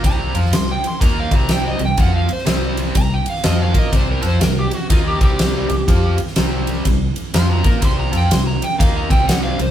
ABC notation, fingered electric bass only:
X:1
M:4/4
L:1/8
Q:"Swing" 1/4=123
K:Cm
V:1 name="Fingered electric bass" clef=bass
C,, F,, C,, z E,, C,,2 C,, | F,, z C,,2 C,, z F,, B,, | C,, F,, C,, z E,, C,,2 C,, | F,, z C,,2 C,, z F,, B,, |
C,, F,, C,, z E,, C,,2 C,, |]